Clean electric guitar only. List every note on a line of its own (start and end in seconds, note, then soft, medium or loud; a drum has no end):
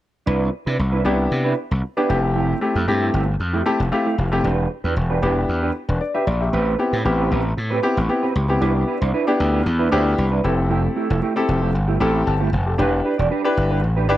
0.26 0.51 D4 medium
0.26 0.51 E4 medium
0.26 0.51 B4 medium
0.53 muted clean electric guitar stroke soft
0.66 0.77 D4 soft
0.66 0.78 E4 medium
0.66 0.78 B4 medium
0.79 muted clean electric guitar stroke soft
0.92 1.03 D4 medium
0.92 1.04 E4 medium
0.92 1.04 B4 medium
1.05 1.21 D4 medium
1.05 1.18 E4 medium
1.05 1.17 B4 medium
1.19 muted clean electric guitar stroke soft
1.31 muted clean electric guitar stroke soft
1.44 1.56 D4 medium
1.44 1.56 E4 medium
1.44 1.57 B4 medium
1.71 muted clean electric guitar stroke soft
1.83 muted clean electric guitar stroke soft
1.97 2.09 D4 medium
1.97 2.08 E4 medium
1.97 2.17 B4 medium
2.09 muted clean electric guitar stroke soft
2.35 2.59 A3 medium
2.35 2.60 E4 medium
2.35 2.60 G4 medium
2.61 muted clean electric guitar stroke soft
2.75 2.86 A3 soft
2.75 2.87 E4 medium
2.75 2.87 G4 medium
3.01 3.12 A3 medium
3.01 3.13 E4 medium
3.01 3.13 G4 medium
3.13 3.30 A3 medium
3.13 3.27 E4 medium
3.13 3.26 G4 medium
3.27 muted clean electric guitar stroke soft
3.40 muted clean electric guitar stroke soft
3.53 3.64 A3 medium
3.53 3.65 E4 medium
3.53 3.65 G4 medium
3.65 muted clean electric guitar stroke soft
3.79 muted clean electric guitar stroke soft
3.92 muted clean electric guitar stroke soft
4.06 4.17 A3 medium
4.06 4.17 E4 medium
4.06 4.18 G4 medium
4.18 muted clean electric guitar stroke soft
4.32 muted clean electric guitar stroke soft
4.44 4.68 D4 medium
4.44 4.68 G4 medium
4.44 4.69 B4 medium
4.70 muted clean electric guitar stroke soft
4.84 4.95 D4 soft
4.84 4.95 G4 medium
4.84 4.96 B4 medium
4.96 muted clean electric guitar stroke soft
5.10 5.21 D4 medium
5.10 5.21 G4 medium
5.10 5.22 B4 medium
5.22 5.39 D4 medium
5.22 5.36 G4 medium
5.22 5.35 B4 medium
5.36 muted clean electric guitar stroke soft
5.48 muted clean electric guitar stroke soft
5.62 5.73 D4 medium
5.62 5.74 G4 medium
5.62 5.74 B4 medium
5.75 muted clean electric guitar stroke soft
5.88 muted clean electric guitar stroke soft
6.01 muted clean electric guitar stroke soft
6.14 6.25 D4 medium
6.14 6.26 G4 medium
6.14 6.26 B4 medium
6.27 muted clean electric guitar stroke soft
6.40 muted clean electric guitar stroke soft
6.53 6.77 C4 medium
6.53 6.77 G4 medium
6.53 6.77 B4 loud
6.79 muted clean electric guitar stroke soft
6.92 7.04 C4 medium
6.92 7.04 G4 medium
6.92 7.04 B4 medium
7.18 7.29 C4 medium
7.18 7.30 G4 medium
7.18 7.30 B4 medium
7.31 7.47 C4 medium
7.31 7.44 G4 medium
7.31 7.43 B4 medium
7.45 muted clean electric guitar stroke soft
7.57 muted clean electric guitar stroke soft
7.70 7.82 C4 medium
7.70 7.82 G4 medium
7.70 7.82 B4 medium
7.83 muted clean electric guitar stroke soft
7.96 muted clean electric guitar stroke soft
8.09 muted clean electric guitar stroke soft
8.23 8.34 C4 medium
8.23 8.34 G4 medium
8.23 8.35 B4 medium
8.35 muted clean electric guitar stroke soft
8.49 muted clean electric guitar stroke soft
8.61 8.82 D4 medium
8.61 8.74 E4 medium
8.61 8.74 B4 medium
8.75 muted clean electric guitar stroke soft
8.87 9.01 D4 medium
8.87 9.00 E4 medium
8.87 9.00 B4 medium
9.01 9.12 D4 medium
9.01 9.13 E4 medium
9.01 9.14 C5 medium
9.13 9.34 D4 medium
9.13 9.27 E4 medium
9.13 9.26 B4 medium
9.27 muted clean electric guitar stroke soft
9.39 muted clean electric guitar stroke soft
9.53 9.64 D4 medium
9.53 9.65 E4 medium
9.53 9.65 B4 medium
9.79 9.90 D4 medium
9.79 9.91 E4 medium
9.79 9.92 B4 medium
9.92 10.08 D4 medium
9.92 10.05 E4 medium
9.92 10.05 C5 medium
10.05 muted clean electric guitar stroke soft
10.18 muted clean electric guitar stroke soft
10.31 10.44 D4 medium
10.31 10.43 E4 medium
10.31 10.51 B4 medium
10.44 muted clean electric guitar stroke soft
10.58 muted clean electric guitar stroke soft
10.70 10.90 A3 medium
10.70 10.83 E4 medium
10.70 10.82 G4 loud
10.84 muted clean electric guitar stroke soft
10.96 11.10 A3 medium
10.96 11.09 E4 medium
10.96 11.09 G4 medium
11.10 11.21 A3 medium
11.10 11.21 E4 medium
11.10 11.22 A4 medium
11.22 11.43 A3 medium
11.22 11.35 E4 medium
11.22 11.35 G4 loud
11.36 muted clean electric guitar stroke soft
11.48 muted clean electric guitar stroke soft
11.62 11.73 A3 medium
11.62 11.73 E4 medium
11.62 11.73 G4 medium
11.74 muted clean electric guitar stroke soft
11.88 11.99 A3 medium
11.88 11.99 E4 medium
11.88 12.01 G4 medium
12.00 12.17 A3 medium
12.00 12.13 E4 medium
12.00 12.14 A4 medium
12.14 muted clean electric guitar stroke soft
12.26 muted clean electric guitar stroke soft
12.40 12.51 A3 medium
12.40 12.51 E4 medium
12.40 12.52 G4 medium
12.52 muted clean electric guitar stroke soft
12.66 muted clean electric guitar stroke soft
12.78 12.99 D4 medium
12.78 12.92 G4 loud
12.78 12.91 B4 loud
12.92 muted clean electric guitar stroke medium
13.04 13.18 D4 medium
13.04 13.18 G4 medium
13.04 13.18 B4 medium
13.18 13.29 D4 soft
13.18 13.30 G4 medium
13.18 13.31 D5 medium
13.30 13.51 D4 medium
13.30 13.44 G4 medium
13.30 13.43 B4 medium
13.44 muted clean electric guitar stroke soft
13.57 muted clean electric guitar stroke soft
13.71 13.82 D4 medium
13.71 13.82 G4 medium
13.71 13.82 B4 medium
13.83 muted clean electric guitar stroke soft
13.97 14.08 D4 medium
13.97 14.08 G4 medium
13.97 14.09 B4 medium
14.09 14.17 D4 medium
14.09 14.17 G4 medium
14.09 14.17 D5 medium